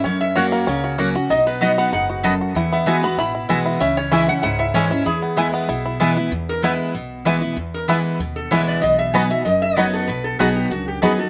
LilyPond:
<<
  \new Staff \with { instrumentName = "Resonator guitar played with a steel bar" } { \time 4/4 \key e \major \tempo 4 = 191 cis''8 e''8 cis''4 cis''4. r8 | dis''8 b'8 dis''8 fis''8 fis''4 r4 | fis''8 e''8 gis''8 b''8 b''4 r4 | e''8 cis''8 e''8 fis''8 fis''8 e''8 cis''4 |
gis'2. r4 | r8 ais'8 b'8 r2 r8 | r8 ais'8 b'8 r4 a'8 cis''8 d''8 | dis''8 e''8 gis''8 e''8 dis''8 e''8 cis''8 a'8 |
b'8 a'8 gis'8 g'8 fis'8 g'8 gis'8 a'8 | }
  \new Staff \with { instrumentName = "Mandolin" } { \time 4/4 \key e \major r4 <ais fis' cis'' fis''>8 r4. <ais fis' cis'' fis''>8 r8 | r4 <b fis' dis'' b''>8 r4. <b fis' dis'' b''>8 r8 | r4 <b fis' e'' gis''>8 r4. <b fis' e'' gis''>8 r8 | r4 <cis' gis' e'' gis''>8 r4. <cis' gis' e'' gis''>8 r8 |
r4 <b e' b' gis''>8 r4. <b e' b' gis''>8 r8 | r4 <b e' b' gis''>8 r4. <b e' b' gis''>8 r8 | r4 <b e' b' gis''>8 r4. <b e' b' gis''>8 r8 | r4 <b fis' dis'' b''>8 r4. <b fis' dis'' b''>8 r8 |
r4 <b fis' dis'' b''>8 r4. <b fis' dis'' b''>8 r8 | }
  \new Staff \with { instrumentName = "Five-string banjo" } { \time 4/4 \key e \major cis'4 fis'8 ais8 cis'8 fis'8 fis'8 fis'8 | dis'8 b8 fis'8 b8 dis'8 fis'8 a'8 fis'8 | e'8 b8 e'8 b8 e'8 e'8 e'8 e'8 | cis'8 cis'8 e'8 cis'8 e'8 e'8 cis'8 e'8 |
e'8 b8 e'8 b8 e'8 e'8 e'8 e'8 | r4 <b e'>8 r4. <b e'>8 r8 | r4 <b e'>8 r4. <b e'>8 r8 | r4 <b dis' fis'>8 r4. <b dis' fis'>8 r8 |
r4 <b dis' fis'>8 r4. <b dis' fis'>8 r8 | }
  \new Staff \with { instrumentName = "Steel-string acoustic guitar" } { \time 4/4 \key e \major << { r4 <fis ais cis' fis'>4 r4 <fis ais cis' fis'>8 <cis' fis'>8 | r4 <fis b dis' fis'>4 r2 | r4 <e gis b fis'>8 <b fis'>8 r4 <e gis b fis'>4 | r4 <e gis cis' e'>8 <cis' e'>8 r4 <e gis cis' e'>8 <cis' e'>8 |
r4 <e gis b e'>4 r4 <e gis b e'>8 <b e'>8 | r4 <e gis b e'>4 r4 <e gis b e'>8 <b e'>8 | r4 <e gis b e'>4 r4 <e gis b e'>4 | r4 <fis b dis' fis'>8 <dis' fis'>8 r4 <fis b dis' fis'>4 |
r4 <fis b dis' fis'>4 r4 <fis b dis' fis'>8 <dis' fis'>8 | } \\ { fis,2 cis2 | b,2 gis,4 fis,4 | e,2 b,2 | cis2 gis,2 |
e,2 b,2 | e,2 b,2 | e,2 b,2 | b,2 fis,2 |
b,2 fis,2 | } >> }
  \new Staff \with { instrumentName = "Upright bass" } { \clef bass \time 4/4 \key e \major fis,2 cis,2 | b,,2 fis,,2 | e,2 a,,4 b,,4 | cis,2 cis,4 dis,4 |
e,2 b,,2 | e,2 b,,2 | e,2 dis,4 cis,4 | b,,2 fis,,2 |
b,,4 b,,4 cis,4 dis,4 | }
>>